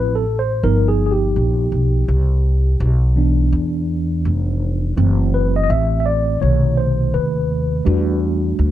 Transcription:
Already playing: A1 F3 C4 E4 B4
0.15 A4
0.39 C5
0.63 G1 F3 B3 D#4 A#4
0.88 G#4
1.06 G#4
1.11 G4
1.36 A#1
1.72 B1
2.08 C2
2.80 B1
3.16 E3 B3 D4
3.52 E2
4.25 F1
4.96 F#1 E3 A3 C4
5.34 B4
5.56 D#5
5.63 D#5
5.70 A1 E5
6.00 E5
6.06 D5
6.41 B1 C3 D#3 A3 C#5
6.77 C5
7.14 D#2 B4
7.85 E2 G3 A3 D4 F#4
8.59 D2

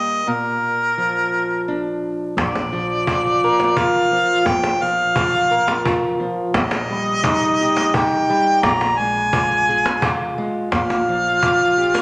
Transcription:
Already playing: A#2 G3 A#3 D#5
0.27 A#2 A#4
0.98 F3
1.68 D4
2.37 A#1 A#2 D5, cajon bass, cajon slap
2.55 cajon slap
2.73 F3
3.07 F4, cajon bass
3.44 A#4
3.60 cajon slap
3.77 F4 F5, cajon bass
4.11 F3, cajon slap
4.46 A#1 A#2 G5, cajon bass, cajon slap
4.63 cajon slap
4.82 F3 F5
5.16 F4, cajon bass
5.51 A#4
5.68 cajon slap
5.85 F4, cajon bass
6.20 F3, cajon slap
6.54 A#1 A#2 D#5, cajon bass, cajon slap
6.71 cajon slap
6.91 G3
7.24 D#4, cajon bass
7.61 G4
7.77 cajon slap
7.94 D#4 G5, cajon bass
8.29 G3, cajon slap
8.63 A#1 A#2 A#5, cajon bass, cajon slap
8.81 cajon slap
8.98 G#3 G#5
9.33 F4, cajon bass
9.69 G#4
9.86 cajon slap
10.02 F4, cajon bass
10.38 G#3, cajon slap
10.71 A#1 A#2 F5, cajon bass, cajon slap
10.90 cajon slap
11.09 F3
11.43 F4, cajon bass
11.78 G4
11.94 A#4, cajon slap

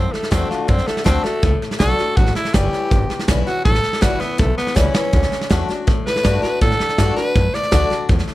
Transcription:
Already playing: F#2 A2 C4
0.12 A3, muted upright bass stroke, snare
0.23 snare
0.31 E2 D3 A3 C4 D4 F#4, kick, snare, hi-hat pedal
0.50 F4, muted upright bass stroke, snare
0.68 F#2 D3 C4, kick, snare
0.78 snare
0.87 A3, muted upright bass stroke, snare
0.97 snare
1.04 D2 D3 A3 C4 D4 F#4, kick, snare, hi-hat pedal
1.24 A3 D4 F#4, muted upright bass stroke, snare
1.43 C#2 A2, kick, snare
1.62 snare
1.71 snare
1.79 B1 D3 A3 D4 F#4 A4, kick, snare, hi-hat pedal
1.98 D4 F#4, snare
2.17 A1 A2 F#4, kick, snare
2.26 snare
2.35 E4, snare
2.45 snare
2.54 F#1 E3 G3 C#4 E4 G4, kick, snare, hi-hat pedal
2.73 snare
2.91 G1 E2, kick, snare
3.10 snare
3.19 snare
3.28 B1 E3 G3 C#4 E4, kick, snare, hi-hat pedal
3.47 C#4 E4 F#4, snare
3.65 A1 A2 A4, kick, snare
3.74 snare
3.83 muted upright bass stroke, snare
3.93 snare
4.01 G1 E3 G3 C#4 E4 F#4, kick, snare, hi-hat pedal
4.20 B3 C#4 E4, muted upright bass stroke, snare
4.38 B1 E2 A3, kick, snare
4.58 B3, snare
4.67 snare
4.75 C#2 E3 G3 C#4 E4, kick, snare, hi-hat pedal
4.94 C#4 E4, snare
5.13 D2 D3, kick, snare
5.22 snare
5.31 muted upright bass stroke, snare
5.41 snare
5.50 E2 D3 A3 D4 F#4, kick, snare, hi-hat pedal
5.68 D4 F#4, muted upright bass stroke, snare
5.87 F#2 A2, kick, snare
6.06 B4, muted upright bass stroke, snare
6.16 snare
6.24 G2 D3 A3 D4 F#4, kick, snare, hi-hat pedal
6.42 D4 F#4 B4, muted upright bass stroke, snare
6.61 A2 D3 A4, kick, snare
6.71 snare
6.80 muted upright bass stroke, snare
6.89 snare
6.98 G2 D3 A3 D4 F#4, kick, snare, hi-hat pedal
7.16 D4 F#4 B4, muted upright bass stroke, snare
7.36 F#2 A2, kick, snare
7.54 D5, muted upright bass stroke, snare
7.63 snare
7.71 D2 D3 A3 D4 F#4, kick, snare, hi-hat pedal
7.90 D4 F#4, muted upright bass stroke, snare
8.09 E2 A2, kick, snare
8.19 snare
8.28 muted upright bass stroke, snare

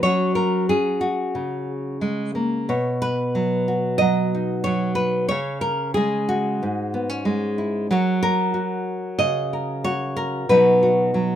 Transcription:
Already playing: F#3
0.03 F#3 C#4 F#4 C#5
0.35 A#4
0.69 C#4 G#4
1.01 F#4
1.35 C#3
2.01 G#3
2.35 A#3
2.69 B2 C#5
3.02 B4
3.35 F#3
3.68 F#4
3.98 F#3 D#5
4.35 D#4
4.64 F#3 C#5
4.95 B4
5.29 C#3 C#5
5.61 A#4
5.94 G#3 G#4
6.29 F#4
6.63 G#2
6.94 B3
7.09 C#4
7.25 G#3
7.58 E4
7.91 F#3 F#4 A#4 C#5
8.23 A#4
8.54 F#4
9.19 C#3 D#5
9.53 A#4
9.84 F#4 C#5
10.16 A#4
10.49 B2 F#3 D#4 F#4 B4
10.83 F#4
11.14 F#3

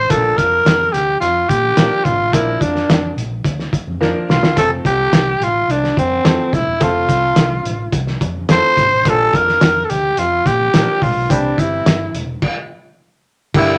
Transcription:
Already playing: C5
0.09 A#1 F3 A#3 D4 A4 A#4, kick, closed hi-hat, muted conga, low conga
0.37 F2 A#4, kick, closed hi-hat
0.65 F2, snare, closed hi-hat
0.79 high conga
0.93 D2 G4, closed hi-hat, muted conga, low conga
1.20 F2 F4, closed hi-hat, muted conga, high conga
1.49 A#2 G4, kick, closed hi-hat, muted conga
1.64 high conga
1.77 A#2 F3 A#3 D4 A#4, snare, closed hi-hat, muted conga, high conga
2.04 G#1 F4, kick, closed hi-hat, muted conga, low conga
2.19 A1
2.32 A#1 F3 A#3 D4 E4 A#4, kick, closed hi-hat, low conga
2.61 F2 D4, kick, closed hi-hat, muted conga
2.75 snare
2.88 F2, snare, closed hi-hat, muted conga
3.02 high conga
3.16 A#1, closed hi-hat, muted conga, low conga
3.44 D2, kick, closed hi-hat, muted conga, high conga
3.59 snare
3.73 muted fingered electric bass stroke, kick, closed hi-hat
3.87 F2, high conga
4.01 F2 F3 A#3 D4 A#4, snare, high conga
4.29 C2 F4, snare, low conga
4.43 D2, snare
4.56 F1 F3 A3 C4 A4, kick, closed hi-hat, muted conga, low conga
4.85 C2 G4, kick, closed hi-hat, muted conga
5.12 C2, snare, closed hi-hat
5.27 high conga
5.40 A1 F4, closed hi-hat, low conga
5.68 C2 D4, closed hi-hat, high conga
5.84 snare
5.97 F2 C4, kick, closed hi-hat
6.12 high conga
6.24 F2 F3 A3 C4 A4, snare, closed hi-hat, high conga
6.53 D#1 E4, kick, closed hi-hat, muted conga, low conga
6.67 E1
6.80 F1 F3 A3 C4 F4 A4, kick, closed hi-hat, muted conga, low conga
7.09 C2, kick, closed hi-hat, muted conga
7.36 C2, snare, closed hi-hat
7.52 high conga
7.65 A1, closed hi-hat, low conga
7.92 C2, kick, closed hi-hat, muted conga, high conga
8.07 snare
8.21 F2, kick, closed hi-hat, muted conga
8.37 high conga
8.49 F2 F3 A3 C4 A4 C5, snare, closed hi-hat, high conga
8.77 G#1, kick, closed hi-hat, muted conga, low conga
8.93 A1
9.04 A#1 F3 A#3 D4 A#4, kick, closed hi-hat, muted conga, low conga
9.09 A4
9.34 F2 A#4, kick, closed hi-hat, muted conga
9.48 snare
9.61 F2, snare, closed hi-hat
9.77 high conga
9.85 A4
9.90 D2 G4, closed hi-hat, muted conga, low conga
10.17 F2 F4, closed hi-hat, high conga
10.46 A#2 G4, kick, closed hi-hat, muted conga
10.61 high conga
10.74 A#2 F3 A#3 D4 A#4, snare, closed hi-hat, muted conga, high conga
11.02 A#1 F4, kick, open hi-hat, low conga
11.16 B1
11.29 C2 E3 G3 C4 D4 G4, kick, closed hi-hat, muted conga, low conga
11.58 G1 E4, kick, closed hi-hat
11.86 G1, snare, closed hi-hat, muted conga
12.01 high conga
12.14 E1, closed hi-hat, muted conga, low conga
12.42 kick, crash
13.54 G1 D3 G3 A#3 E4 G4, kick, crash, muted conga, low conga

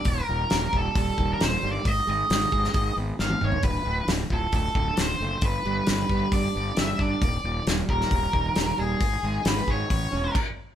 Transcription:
0.05 D#1 D#2 A#4, kick, open hi-hat
0.28 D#1 A#2
0.50 D#1 G3, snare, open hi-hat
0.73 D#1 G4, kick
0.78 A4
0.95 D#1 G3 A4, kick, open hi-hat
1.18 D#1 D#3, kick
1.33 A#4
1.41 D#1 A#2 C5, snare, open hi-hat
1.63 G1 G3
1.72 D5
1.85 G#1 G#2 D#5, kick, open hi-hat
2.07 G#1 G#3 D#5
2.29 G#1 D#4, snare, open hi-hat
2.52 G#1 G#4, kick
2.64 snare
2.74 G#1 D#4, kick, open hi-hat
2.96 G#1 B3
3.19 G#1 G#3 F5, snare
3.30 high tom
3.41 G#1 D#4 C#5, mid tom
3.52 floor tom
3.63 D1 D2 B4, kick, open hi-hat
3.85 D1 A2
4.08 D1 A3, snare, open hi-hat
4.30 D1 F4 A4, kick
4.52 D1 A3 A4, kick, open hi-hat
4.75 D1 D3, kick
4.97 D1 A2 C5, snare, open hi-hat
5.20 F#1 A3
5.42 G1 G2 B4, kick, open hi-hat
5.65 G1 G3
5.87 G1 D4 B4, snare, open hi-hat
6.09 G1 G4, kick
6.32 G1 D4 D5, kick, open hi-hat
6.55 G1 B3
6.77 G1 G3 E5, snare, open hi-hat
6.99 G1 D4 D5, kick
7.22 D#1 D#2, kick, open hi-hat
7.44 D#1 A#2
7.67 D#1 G3, snare, open hi-hat
7.89 D#1 G4 A#4, kick
8.01 snare
8.11 D#1 G3, kick, open hi-hat
8.33 D#1 D#3, kick
8.56 D#1 A#2, snare, open hi-hat
8.78 D#1 G3 G#4
9.01 G#1 G#2, kick, open hi-hat
9.23 G#1 G#3
9.45 G#1 D#4 B4, snare, open hi-hat
9.67 G#1 G#4 C#5, kick
9.90 A1 A2, kick, open hi-hat
10.12 E1 C#4
10.35 kick, crash

